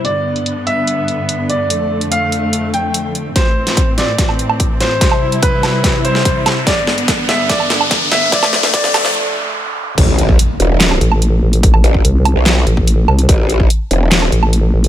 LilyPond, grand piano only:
\new Staff \with { instrumentName = "Grand piano" } { \time 4/4 \key a \minor \tempo 4 = 145 d''4. e''2 d''8~ | d''4 f''4. g''4. | c''4. d''2 c''8~ | c''4 b'4. c''4. |
d''4. e''8 d''4. e''8 | d''4 d''4 r2 | r1 | r1 |
r1 | }